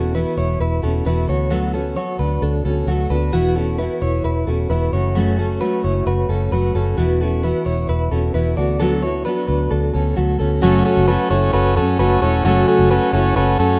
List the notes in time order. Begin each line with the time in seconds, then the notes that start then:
Already playing: E1 B3 C#4 E4 F#4 A4
0.14 E3 B3 E4 F#4 B4
0.37 E1 E4 C#5
0.60 E1 E4 B4
0.82 E1 B3 C#4 E4 F#4 A4
1.05 E1 E3 B3 E4 F#4 B4
1.27 D2 B3 F#4 A4 C#5
1.50 D3 F#3 A3 B3 F#4 A4
1.74 B3 C#4 F#4 A4
1.95 F#3 B3 F#4 A4 C#5
2.19 D2 D4 B4
2.42 D2 D4 A4
2.65 D2 B3 C#4 F#4 A4
2.87 D2 F#3 A3 B3 F#4
2.91 A4
3.10 D2 B3 D4 F#4 A4 B4
3.33 E1 E3 B3 E4 F#4
3.56 B3 C#4 E4 F#4 A4
3.79 E3 B3 E4 F#4 B4
4.02 E1 E4 C#5
4.24 E1 E4 B4
4.47 E1 B3 C#4 E4 F#4 A4
4.70 E1 E3 B3 E4 F#4 B4
4.93 F#1 F#3 A3 C#4 F#4 C#5
5.15 F#2 C#3 F#3 A3 C#4 F#4
5.38 F#3 A3 C#4 F#4 A4
5.61 F#3 A3 C#4 F#4 B4
5.84 F#1 E4 C#5
6.06 F#1 F#4 B4
6.28 F#1 F#3 A3 C#4 F#4 A4
6.51 F#1 F#3 A3 C#4 F#4 B4
6.75 F#1 F#3 A3 C#4 F#4 A4
6.97 E1 E3 B3 E4 F#4
7.20 B3 C#4 E4 F#4 A4
7.43 E3 B3 E4 F#4 B4
7.66 E1 E4 C#5
7.89 E1 E4 B4
8.12 E1 B3 C#4 E4 F#4 A4
8.34 E1 E3 B3 E4 F#4 B4
8.57 D2 B3 F#4 A4 D5
8.80 D3 F#3 B3 D4 F#4 A4
9.03 B3 E4 F#4 A4 C#5
9.25 F#3 B3 D4 F#4 A4 B4
9.48 D2 D4 B4
9.71 D2 D4 A4
9.94 D2 B3 C#4 F#4 A4
10.16 D2 F#3 A3 B3 F#4 A4
10.38 D2 B3 C#4 F#4 A4
10.61 F#1 F#2 C#3 F#3 A3 C#4 F#4 A4
10.85 C#4 F#4 A4
10.97 F#1
11.07 F#3 A3 C#4 F#4 A4 B4
11.29 F#1 F#3 A3 C#4 E4 F#4 A4 C#5
11.53 F#1 C#4 F#4 A4 B4
11.76 F#2 C#4 F#4 A4
11.99 F#1 F#3 A3 C#4 F#4 A4 B4
12.22 E1 F#3 A3 C#4 E4 F#4 A4 C#5
12.44 F#1 F#2 C#3 F#3 A3 C#4 F#4 A4
12.68 C#4 F#4 A4
12.79 F#1
12.89 F#3 A3 C#4 F#4 A4 B4
13.12 F#1 F#3 A3 C#4 E4 F#4 A4 C#5
13.36 F#1 C#4 F#4 A4 B4
13.59 F#2 C#4 F#4 A4